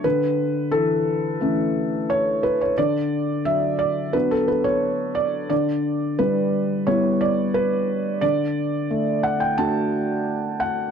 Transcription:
X:1
M:4/4
L:1/16
Q:1/4=88
K:D
V:1 name="Felt piano"
B4 A8 c2 B c | d4 e2 d2 B A B c3 d2 | d4 B4 c2 d2 B4 | d6 f g a6 f2 |]
V:2 name="Felt piano" clef=bass
D,4 E,4 [E,A,C]8 | D,4 F,4 [F,B,D]8 | D,4 G,4 [G,B,E]8 | D,4 A,4 [A,DF]8 |]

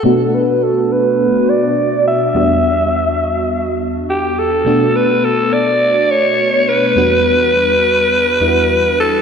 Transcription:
X:1
M:4/4
L:1/8
Q:"Swing 16ths" 1/4=104
K:Bm
V:1 name="Alto saxophone"
A B A B2 d2 e- | e4- e z G A- | A B A d2 c2 B- | B6- B A |]
V:2 name="FM electric piano"
[B,,A,B,DF]8 | [E,,G,B,DF]8 | [B,,A,B,DF]8 | [E,,G,B,DF]4- [E,,G,B,DF] [E,,G,B,DEF]3 |]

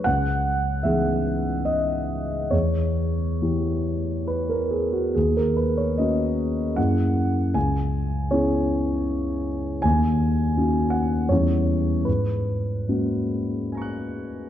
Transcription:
X:1
M:3/4
L:1/16
Q:1/4=75
K:C#dor
V:1 name="Grand piano"
f4 e4 d4 | c8 B A G F | G A B c d4 f4 | g4 c6 z2 |
g6 f2 c4 | B8 [gac'f']4 |]
V:2 name="Grand piano"
C,,4 [E,B,DG]8 | E,,4 [E,B,E=G]8 | D,,4 [A,CF]4 [F,,A,CEG]4 | C,,4 [B,CEG]8 |
D,,4 [A,CDF]4 [E,,=G,B,CE]4 | G,,4 [G,A,CF]8 |]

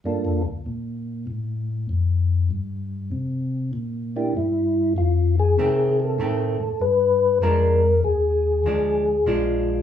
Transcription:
X:1
M:4/4
L:1/8
Q:"Swing" 1/4=98
K:Fmix
V:1 name="Tonewheel organ"
[B,DFA] z6 z | z4 z [B,D=EG] E2 | F _A2 =A3 =B2 | B2 _A4 F2 |]
V:2 name="Hollow-body jazz guitar" clef=bass
z8 | z8 | z2 [E,A,C]2 [E,A,C] z3 | [F,_A,D] z3 [F,A,D] z [F,A,D]2 |]
V:3 name="Tonewheel organ" clef=bass
(3G,, F,, D,, B,,2 A,,2 F,,2 | G,,2 C,2 B,,2 G,,2 | F,,2 C,2 A,, A,, G,,2 | F,,2 E,,2 D,,2 B,,,2 |]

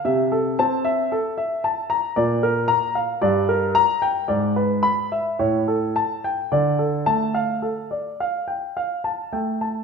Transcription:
X:1
M:3/4
L:1/16
Q:1/4=55
K:Dm
V:1 name="Grand piano"
e A a e A e a b d B b f | d B b g d =B =b e ^c A a g | d A a f A d f g f a g a |]
V:2 name="Grand piano" clef=bass
C,2 C2 z4 B,,2 z2 | G,,2 z2 ^G,,2 z2 A,,2 z2 | D,2 A,2 z6 A,2 |]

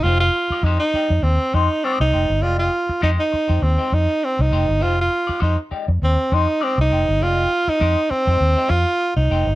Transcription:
X:1
M:4/4
L:1/16
Q:"Swing 16ths" 1/4=100
K:Fdor
V:1 name="Clean electric guitar"
[A,EGc] z2 [A,EGd] [A,EGc] z [A,EGd] z3 [A,EGc] z [A,EGd] z [A,EGc] z | [A,EGd]2 z2 [A,EGc] z2 [A,EGc] z [A,EGc] z4 [A,EGc] z | [A,EGc] z2 [A,EGd] [A,EGc] z [A,EGd] z3 [A,EGc] z [A,EGd] z [A,EGc] z | [A,EGd]2 z2 [A,EGc] z2 [A,EGc] z [A,EGc] z4 [A,EGc] z |]
V:2 name="Tenor saxophone"
F F3 E E3 C2 E2 C E3 | F F3 E E3 C2 E2 C E3 | F F3 E z3 C2 E2 C E3 | F3 E3 C4 F3 E3 |]
V:3 name="Fingered electric bass" clef=bass
F,,,2 z2 F,, z2 F,, E,, z F,, z2 C,, F,,, G,,, | F,,,2 z2 F,, z2 F,, E,, z F,, z2 C,, F,,, G,,, | F,,,2 z2 F,, z2 F,, E,, z F,, z2 C,, F,,, G,,, | F,,,2 z2 F,, z2 F,, E,, z F,, z2 C,, F,,, G,,, |]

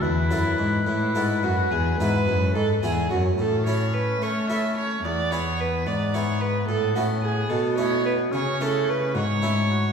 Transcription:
X:1
M:12/8
L:1/8
Q:3/8=72
K:A
V:1 name="Violin"
E3 E2 F G B2 A G F | A c B c e c d c B d c B | A F G A c B c A B c3 |]
V:2 name="Oboe"
B8- B3 z | C6 B,3 B,3- | B,6 C3 F E F |]
V:3 name="Harpsichord"
z [B,EA]3 [B,EA]2 z [B,EG]3 [B,EG]2 | z [CEA]3 [CEA]2 z [B,EG]3 [B,EG]2 | z [A,CE]3 [A,CE]2 z [A,CE]3 [A,CE]2 |]
V:4 name="Harpsichord" clef=bass
E,, F,, G,, A,, G,, F,, E,, G,, F,, G,, E,, F,, | A,,3 A,3 E,,3 G,,3 | A,,3 B,,3 C,3 G,,3 |]
V:5 name="Cello" clef=bass
E,, F,, G,, A,, G,, F,, E,, G,, F,, G,, E,, F,, | A,,3 A,3 E,,3 G,,3 | A,,3 B,,3 C,3 G,,3 |]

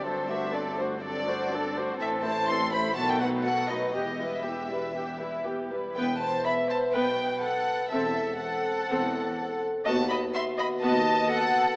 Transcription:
X:1
M:4/4
L:1/16
Q:1/4=123
K:Dmix
V:1 name="Violin section"
c2 e2 d2 c2 d6 z2 | [K:Em] e2 a2 c'2 b2 a g f2 f2 ^d2 | ^d4 e8 z4 | g2 a2 b2 a2 g4 f4 |
e4 f8- f2 z2 | a2 b2 c'2 b2 a4 f4 |]
V:2 name="Violin section"
[DA]2 [Fc]2 [DA]2 [Fc]2 [DA]2 [Fc]2 [DA]2 [Fc]2 | [K:Em] [CA]2 [Ec]2 [CA]2 [Ec]2 [FA]2 [^DB]2 [FA]2 [DB]2 | G2 [EB]2 G2 [EB]2 G2 [EB]2 G2 [EB]2 | B2 c2 e2 c2 B4 A4 |
A4 A8- A2 z2 | ^d2 d2 e2 d2 d4 A4 |]
V:3 name="French horn section"
z16 | [K:Em] z16 | z16 | [B,B]16 |
[CA]16 | [B,F]16 |]
V:4 name="Viola section"
[F,C]2 [A,D]2 [F,C]2 [A,D]2 [F,C]2 [A,D]2 [F,C]2 [A,D]2 | [K:Em] [E,C]2 A,2 [E,C]2 A,2 [^D,B,]2 [F,A,]2 [D,B,]2 [F,A,]2 | [E,B,]2 G,2 [E,B,]2 G,2 [E,B,]2 G,2 [E,B,]2 G,2 | [B,B]2 z6 [B,B]2 z6 |
[CA]2 z6 [CA]2 z6 | [B,F]2 z6 [B,F]2 z6 |]
V:5 name="Cello section" clef=bass
G,,16 | [K:Em] A,,8 B,,8 | E,,12- E,,2 z2 | E,,4 z4 B,,4 z4 |
E,,4 z4 E,,4 z4 | ^D,,4 z4 D,,4 z4 |]
V:6 name="Double bass section" clef=bass
G,,,16 | [K:Em] A,,,8 B,,,8 | E,,,12- E,,,2 z2 | E,,,4 z4 B,,,4 z4 |
E,,,4 z4 E,,,4 z4 | ^D,,4 z4 D,,4 z4 |]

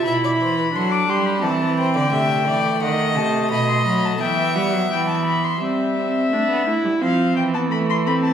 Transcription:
X:1
M:4/4
L:1/16
Q:1/4=86
K:Ephr
V:1 name="Violin"
b4 c' d' c' b a2 g6 | ^f2 a2 b c' b a g2 f2 g a b c' | [K:C] e8 f2 g a b c' b a |]
V:2 name="Violin"
e d c B A2 G2 A B c d e2 d2 | ^d4 d4 e8 | [K:C] z16 |]
V:3 name="Viola"
E4 D4 C4 A,4- | A,8 B,8 | [K:C] C2 C2 D2 E2 C3 B, A,2 C2 |]
V:4 name="Cello" clef=bass
B,,2 E,2 ^F,2 G,2 E,3 D, C,2 E,2 | ^D,2 C,2 B,,2 ^F,2 E,2 G, F, E,4 | [K:C] G,4 A, B, A, G, F,2 E,6 |]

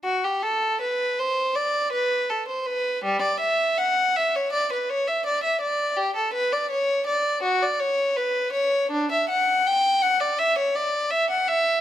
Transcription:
X:1
M:4/4
L:1/16
Q:1/4=82
K:D
V:1 name="Violin"
F G A2 B2 =c2 d2 B2 A c B2 | G, d e2 f2 e c d B c e d e d2 | G A B d c2 d2 F d c2 B2 c2 | D e f2 g2 f d e c d2 e f e2 |]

